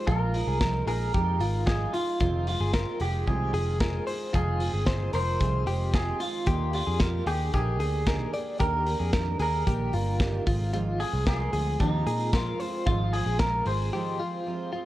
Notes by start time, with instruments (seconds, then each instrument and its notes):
0.07 picked electric bass A#1, twelve-string acoustic guitar A#2 F3 G#3 D#4 F4, clean electric guitar F4 A#4, kick, closed hi-hat
0.34 twelve-string acoustic guitar G#3 D#4 F4, open hi-hat
0.47 picked electric bass C2, clean electric guitar G#4
0.60 twelve-string acoustic guitar F3 G#3 D#4 F4, clean electric guitar A#4, kick, snare, closed hi-hat
0.87 picked electric bass A#1, twelve-string acoustic guitar G#3 D#4 F4, clean electric guitar G#4 A#4, open hi-hat
1.14 picked electric bass F2, twelve-string acoustic guitar A#2 F3 G#3 D#4 F4, clean electric guitar G4, kick, closed hi-hat
1.40 picked electric bass G#1, twelve-string acoustic guitar D#4 F4, clean electric guitar F4, open hi-hat
1.44 twelve-string acoustic guitar G#3
1.67 twelve-string acoustic guitar F3 G#3 D#4 F4, clean electric guitar G#4, kick, snare, closed hi-hat
1.93 twelve-string acoustic guitar G#3 D#4 F4, clean electric guitar F4, open hi-hat
2.20 picked electric bass F1, twelve-string acoustic guitar F2 C3 D#3 G#3 C4 F4, clean electric guitar F4, kick, closed hi-hat
2.47 twelve-string acoustic guitar D#3 G#3 C4 F4, clean electric guitar F4, open hi-hat
2.60 picked electric bass G1, clean electric guitar G#4
2.73 twelve-string acoustic guitar D#3 G#3 C4 F4, clean electric guitar A#4, kick, snare, closed hi-hat
3.00 picked electric bass F1, twelve-string acoustic guitar D#3 G#3 C4 F4, clean electric guitar G4 G#4, open hi-hat
3.26 picked electric bass C2, twelve-string acoustic guitar F2 C3 D#3 G#3 C4 F4, clean electric guitar G4 G#4, kick, closed hi-hat
3.53 picked electric bass F1, twelve-string acoustic guitar D#3 G#3 C4 F4, clean electric guitar G#4, open hi-hat
3.79 twelve-string acoustic guitar D#3 G#3 C4 F4, clean electric guitar A#4, kick, snare, closed hi-hat
4.07 twelve-string acoustic guitar D#3 G#3 C4 F4, clean electric guitar C5, open hi-hat
4.33 picked electric bass F1, twelve-string acoustic guitar F2 C3 D#3 G#3 C4 F4, clean electric guitar F4 G#4, kick, closed hi-hat
4.60 twelve-string acoustic guitar D#3 G#3 C4 F4, open hi-hat
4.74 picked electric bass G1, clean electric guitar G#4
4.87 twelve-string acoustic guitar D#3 G#3 C4 F4, clean electric guitar C5, kick, snare, closed hi-hat
5.13 picked electric bass F1, twelve-string acoustic guitar D#3 G#3 C4 F4, clean electric guitar A#4 C5, open hi-hat
5.40 picked electric bass C2, twelve-string acoustic guitar F2 C3 D#3 G#3 C4 F4, clean electric guitar G#4, kick, closed hi-hat
5.66 picked electric bass F1, twelve-string acoustic guitar D#3 G#3 C4 F4, clean electric guitar G4, open hi-hat
5.93 twelve-string acoustic guitar D#3 G#3 C4 F4, clean electric guitar G#4, kick, snare, closed hi-hat
6.20 twelve-string acoustic guitar D#3 G#3 C4 F4, clean electric guitar F4, open hi-hat
6.47 picked electric bass D#2, twelve-string acoustic guitar D#3 A#3 D4 G4, clean electric guitar G4, kick, closed hi-hat
6.73 twelve-string acoustic guitar A#3 D4 G4, clean electric guitar F4, open hi-hat
6.87 picked electric bass F2, clean electric guitar G#4
7.00 twelve-string acoustic guitar D#3 A#3 D4 G4, clean electric guitar A#4, kick, snare
7.26 picked electric bass D#2, twelve-string acoustic guitar A#3 D4 G4, clean electric guitar G4 G#4, open hi-hat
7.53 picked electric bass A#1, twelve-string acoustic guitar D#3 A#3 D4 G4, clean electric guitar G4 G#4, kick, closed hi-hat
7.79 picked electric bass D2, twelve-string acoustic guitar A#3 D4 G4, clean electric guitar G#4, open hi-hat
8.06 twelve-string acoustic guitar D#3 A#3 D4 G4, clean electric guitar A#4, kick, snare, closed hi-hat
8.33 twelve-string acoustic guitar A#3 D4 G4, clean electric guitar D5, open hi-hat
8.60 picked electric bass D#2, twelve-string acoustic guitar D#3 A#3 D4 G4, clean electric guitar G4 A#4, kick, closed hi-hat
8.87 twelve-string acoustic guitar A#3 D4 G4, open hi-hat
9.00 picked electric bass F2, clean electric guitar G#4
9.13 twelve-string acoustic guitar D#3 A#3 D4 G4, clean electric guitar A#4, kick, snare, closed hi-hat
9.39 picked electric bass D#2, twelve-string acoustic guitar A#3 D4 G4, clean electric guitar G#4 A#4, open hi-hat
9.66 picked electric bass A#1, twelve-string acoustic guitar D#3 A#3 D4 G4, clean electric guitar G4, kick, closed hi-hat
9.93 picked electric bass G1, twelve-string acoustic guitar A#3 D4 G4, clean electric guitar F4, open hi-hat
10.20 twelve-string acoustic guitar D#3 A#3 D4 G4, kick, snare, closed hi-hat
10.46 picked electric bass G#1, twelve-string acoustic guitar F3 G#3 C4 F4, clean electric guitar F4, kick, open hi-hat
10.73 twelve-string acoustic guitar G#2 D#3 F3 G#3 C4 F4, clean electric guitar F4, closed hi-hat
10.99 twelve-string acoustic guitar F3 G#3 C4 F4, clean electric guitar G#4, open hi-hat
11.13 picked electric bass C2, clean electric guitar G#4
11.26 twelve-string acoustic guitar F3 G#3 C4 F4, clean electric guitar G#4 A#4, kick, snare, closed hi-hat
11.52 picked electric bass D2, twelve-string acoustic guitar F3 G#3 C4 F4, clean electric guitar G#4, open hi-hat
11.79 picked electric bass D#2, twelve-string acoustic guitar G#2 D#3 F3 G#3 C4 F4, clean electric guitar D#4 G4, kick, closed hi-hat
12.07 picked electric bass A#2, twelve-string acoustic guitar F3 G#3 C4 F4, clean electric guitar G#4, open hi-hat
12.33 twelve-string acoustic guitar F3 G#3 C4 F4, clean electric guitar F4 A#4, kick, snare, closed hi-hat
12.60 twelve-string acoustic guitar F3 G#3 C4 F4, clean electric guitar C5, open hi-hat
12.86 picked electric bass G#1, twelve-string acoustic guitar G#2 D#3 F3 G#3 C4 F4, clean electric guitar F4, kick, closed hi-hat
13.13 twelve-string acoustic guitar F3 G#3 C4 F4, clean electric guitar G#4, open hi-hat
13.26 picked electric bass A#1, clean electric guitar G#4
13.39 twelve-string acoustic guitar F3 G#3 C4 F4, clean electric guitar A#4, kick, snare, closed hi-hat
13.66 picked electric bass G#1, twelve-string acoustic guitar F3 G#3 C4 F4, clean electric guitar G#4 C5, open hi-hat
13.93 twelve-string acoustic guitar G#2 D#3 F3 G#3 C4 F4, clean electric guitar G4
14.19 twelve-string acoustic guitar F3 G#3 C4 F4, clean electric guitar F4
14.46 twelve-string acoustic guitar F3 G#3 C4 F4
14.72 twelve-string acoustic guitar F3 G#3 C4 F4, clean electric guitar F4